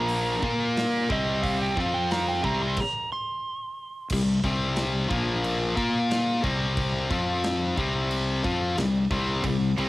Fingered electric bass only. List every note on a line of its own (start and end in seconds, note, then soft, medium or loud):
0.00 0.39 A#1 loud
0.43 1.06 A#2 loud
1.10 1.73 C2 loud
1.77 2.40 F2 medium
2.44 2.75 C2 medium
4.10 4.42 C2 medium
4.44 5.07 C2 medium
5.11 5.74 A#1 loud
5.77 6.40 A#2 loud
6.44 7.07 C2 medium
7.11 7.74 F2 loud
7.77 8.40 C2 loud
8.45 8.75 F2 loud
8.77 9.08 C2 medium
9.10 9.42 C2 loud
9.44 9.75 C2 medium
9.79 9.89 C2 medium